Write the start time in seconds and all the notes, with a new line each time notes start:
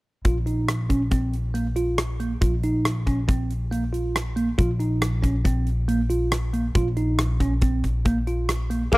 0.25 A#1 F4, kick, closed hi-hat
0.46 D#4, closed hi-hat
0.68 cross-stick, closed hi-hat
0.90 C#4, kick, closed hi-hat
1.11 C4, kick, closed hi-hat
1.34 closed hi-hat
1.54 A#3, closed hi-hat
1.76 F4, closed hi-hat
1.98 cross-stick, closed hi-hat
2.20 A#3, closed hi-hat
2.41 A#1 F4, kick, closed hi-hat
2.63 D#4, closed hi-hat
2.85 cross-stick, closed hi-hat
3.07 C#4, kick, closed hi-hat
3.28 C4, kick, closed hi-hat
3.51 closed hi-hat
3.71 A#3, closed hi-hat
3.93 F4, closed hi-hat
4.16 cross-stick, closed hi-hat
4.36 A#3, closed hi-hat
4.58 A#1 F4, kick, closed hi-hat
4.80 D#4, closed hi-hat
5.02 cross-stick, closed hi-hat
5.23 C#4, kick, closed hi-hat
5.45 C4, kick, closed hi-hat
5.67 closed hi-hat
5.88 A#3, closed hi-hat
6.10 F4, closed hi-hat
6.32 cross-stick, closed hi-hat
6.53 A#3, closed hi-hat
6.75 A#1 F4, kick, closed hi-hat
6.97 D#4, closed hi-hat
7.19 cross-stick, closed hi-hat
7.40 C#4, kick, closed hi-hat
7.62 C4, kick, closed hi-hat
7.84 kick, closed hi-hat
8.05 A#3, kick, closed hi-hat
8.27 F4, closed hi-hat
8.49 cross-stick, closed hi-hat
8.70 A#3, closed hi-hat
8.92 A#1 A#3 G#4, kick, crash